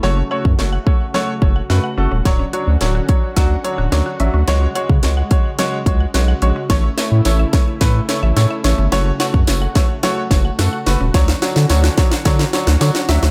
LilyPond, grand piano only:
\new Staff \with { instrumentName = "Grand piano" } { \time 4/4 \key fis \minor \tempo 4 = 108 << { r2. fis''4 | r1 | r1 | r1 |
r1 | r1 | } \\ { <a fis' cis''>8 <a fis' cis''>8 <a fis' cis''>8 <a fis' cis''>8 <a fis' cis''>8 <a fis' cis''>8 <a fis' b'>8 <a fis' a'>8 | <fis d' cis''>8 <fis d' cis''>8 <fis d' cis''>8 <fis d' cis''>8 <fis d' fis'>8 <fis d' cis''>8 <fis d' cis''>8 <fis d' e''>8 | <gis fis' cis''>8 <gis fis' cis''>8 <gis fis' cis''>8 <gis fis' cis''>8 <gis fis' cis''>8 <gis fis' cis''>8 <gis fis' cis''>8 <gis fis' cis''>8 | <a e' cis''>8 <a e' cis''>8 <a e' cis''>8 <a e' cis''>8 <a e' b'>8 <a e' cis''>8 <a e' cis''>8 <a e' cis''>8 |
<a fis' cis''>8 <a fis' cis''>8 <a fis' cis''>8 <a fis' cis''>8 <a fis' cis''>8 <a fis' cis''>8 <a fis' a'>8 <a fis' b'>8 | <fis d' cis''>8 <fis d' cis''>8 <fis d' cis''>8 <fis d' cis''>8 <fis d' cis''>8 <fis d' cis''>8 <fis d' cis''>8 <fis d' e''>8 | } >> }